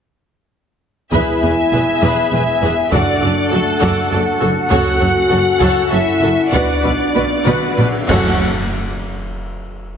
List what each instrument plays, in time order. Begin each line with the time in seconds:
1.12 double bass section E1, cello section E2, woodwind section B3 E4 G#4 G#5, french horn section E4, viola section G#4 B4, violin section E5 B5, taiko
1.42 double bass section E1, cello section E2, viola section G#4 B4, violin section B4 G#5
1.72 double bass section E1, cello section E2, violin section G#4 E5, viola section G#4 B4
2.02 double bass section E1, cello section E2, viola section G#4 B4, violin section E5 B5
2.32 double bass section E1, cello section E2, viola section G#4 B4, violin section B4 G#5
2.62 double bass section E1, cello section E2, viola section G#4 B4, violin section G#4 E5
2.91 double bass section F#1, cello section F#2, french horn section D4, woodwind section D4 F#4 A4 F#5, viola section F#4 A4, violin section D5 F#5, taiko
3.22 double bass section F#1, cello section F#2, viola section F#4 A4, violin section A4 D5
3.51 double bass section F#1, cello section F#2, french horn section A3, viola section F#4 A4, violin section F#4 A4
3.81 double bass section F#1, cello section F#2, viola section F#4 A4, violin section D5 F#5, taiko
4.11 double bass section F#1, cello section F#2, viola section F#4 A4, violin section A4 D5
4.40 double bass section F#1, cello section F#2, viola section F#4 A4, violin section F#4 A4
4.70 double bass section F#1, timpani F#2, cello section F#2, woodwind section C#4, viola section F#4 A4, french horn section F#4, violin section C#5 F#5, taiko
5.00 double bass section F#1, cello section F#2, viola section F#4 A4, violin section A4 C#5
5.30 double bass section F#1, cello section F#2, violin section F#4 A4, viola section F#4 A4
5.60 double bass section F#1, cello section F#2, viola section F#4 A4, violin section C#5 F#5, taiko
5.90 double bass section F#1, cello section F#2, french horn section E4, viola section F#4 A4, violin section A4 C#5 E5
6.21 double bass section F#1, cello section F#2, viola section F#4 A4, violin section F#4 A4
6.52 double bass section B1, cello section B2, woodwind section B3 B4, french horn section D4, viola section F#4 B4, violin section D5 F#5, taiko
6.82 double bass section B1, cello section B2, viola section F#4 B4, violin section B4 D5
7.14 double bass section B1, cello section B2, violin section F#4 B4, viola section F#4 B4
7.46 double bass section B1, cello section B2, viola section F#4 B4, violin section D5 F#5, taiko mid
7.77 double bass section B1, cello section B2, viola section F#4 B4, violin section B4 D5, taiko low-mid
8.08 double bass section F#1, timpani F#2, cello section F#2, viola section A3 A4, woodwind section C#4 F#4 A4 F#5, french horn section F#4, violin section C#5 F#5, concert bass drum, taiko, crash